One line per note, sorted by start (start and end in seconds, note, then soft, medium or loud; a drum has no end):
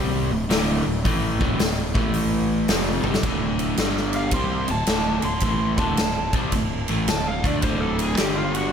0.00 0.28 C2 loud
0.00 0.30 C3 medium
0.00 0.30 G3 loud
0.00 0.31 C4 loud
0.31 0.49 D1 medium
0.31 0.47 D2 medium
0.31 0.47 A2 medium
0.49 0.83 D1 medium
0.49 0.84 D2 medium
0.49 0.84 A2 medium
0.49 0.85 D3 loud
0.49 snare loud
0.49 open hi-hat medium
0.85 1.04 D1 medium
0.85 1.01 D2 medium
0.85 1.01 A2 medium
1.04 1.38 A1 medium
1.04 1.39 A2 medium
1.04 1.40 E3 medium
1.04 1.40 A3 medium
1.04 kick loud
1.04 open hi-hat medium
1.40 1.59 D1 medium
1.40 1.58 D2 loud
1.40 1.58 A2 loud
1.40 1.60 D3 loud
1.40 kick loud
1.59 1.93 D1 medium
1.59 1.88 D2 medium
1.59 1.88 A2 medium
1.59 snare loud
1.59 open hi-hat medium
1.94 2.65 A1 medium
1.94 2.68 A2 medium
1.94 2.69 E3 medium
1.94 2.69 A3 loud
1.94 kick loud
2.13 open hi-hat medium
2.68 3.02 F1 medium
2.68 3.04 F2 medium
2.68 3.04 C3 loud
2.68 3.05 F3 medium
2.68 snare loud
2.68 open hi-hat medium
3.04 3.22 G1 loud
3.04 3.23 G2 medium
3.04 3.24 D3 loud
3.04 3.24 G3 loud
3.04 high tom medium
3.14 snare medium
3.23 3.75 D1 medium
3.23 3.79 D2 medium
3.23 3.79 A2 medium
3.23 3.79 D3 medium
3.23 kick loud
3.23 ride medium
3.59 ride medium
3.77 4.30 G1 medium
3.77 4.34 G2 medium
3.77 4.34 D3 medium
3.77 4.34 G3 medium
3.77 snare loud
3.77 ride medium
3.97 snare soft
4.13 4.34 F5 medium
4.13 ride medium
4.31 4.66 C2 medium
4.31 4.69 C3 medium
4.31 4.70 C6 medium
4.31 kick loud
4.31 ride medium
4.35 4.69 G3 loud
4.35 4.70 C4 loud
4.68 4.87 D1 medium
4.68 4.85 D2 medium
4.68 4.86 A2 medium
4.68 5.24 A5 medium
4.68 ride medium
4.87 5.21 D1 medium
4.87 5.24 D2 medium
4.87 5.24 A2 medium
4.87 5.24 D3 medium
4.87 snare loud
4.87 ride medium
5.22 5.41 D1 medium
5.22 5.40 D2 medium
5.22 5.40 A2 medium
5.22 5.79 C6 medium
5.22 ride medium
5.40 5.76 A1 medium
5.40 5.78 A2 medium
5.40 kick loud
5.40 ride medium
5.45 5.78 E3 medium
5.45 5.79 A3 medium
5.77 5.96 D1 medium
5.77 5.98 D2 medium
5.77 5.98 A2 medium
5.77 5.99 D3 loud
5.77 6.33 A5 medium
5.77 kick loud
5.77 ride medium
5.97 6.32 D1 medium
5.97 6.28 D2 medium
5.97 6.28 A2 medium
5.97 snare loud
5.97 ride medium
6.33 6.51 C2 medium
6.33 6.53 C3 medium
6.33 6.54 G3 medium
6.33 6.54 C4 medium
6.33 kick loud
6.33 ride medium
6.52 6.86 D1 medium
6.52 6.82 D2 medium
6.52 6.83 A2 medium
6.52 kick medium
6.52 ride medium
6.88 7.07 A1 medium
6.88 7.08 A2 medium
6.88 7.09 E3 medium
6.88 7.09 A3 medium
6.88 ride medium
7.08 7.41 D1 medium
7.08 7.38 D2 medium
7.08 7.38 A2 medium
7.08 7.27 A5 loud
7.08 snare loud
7.08 ride medium
7.28 7.45 F5 medium
7.44 7.62 D2 medium
7.44 7.63 D3 medium
7.44 7.63 A3 loud
7.44 7.63 D4 loud
7.44 7.62 D5 medium
7.44 kick loud
7.44 ride medium
7.62 8.14 D1 medium
7.62 8.18 D2 medium
7.62 8.18 A2 medium
7.62 8.18 D3 medium
7.62 7.81 C5 medium
7.62 kick medium
7.62 ride medium
7.80 7.99 A4 medium
7.99 ride medium
8.03 8.18 G#4 medium
8.17 8.69 G1 medium
8.17 8.72 G2 medium
8.17 8.72 D3 loud
8.17 8.72 G3 loud
8.17 8.36 G4 medium
8.17 snare loud
8.17 ride loud
8.38 8.55 F4 medium
8.55 8.72 F#4 loud
8.55 ride medium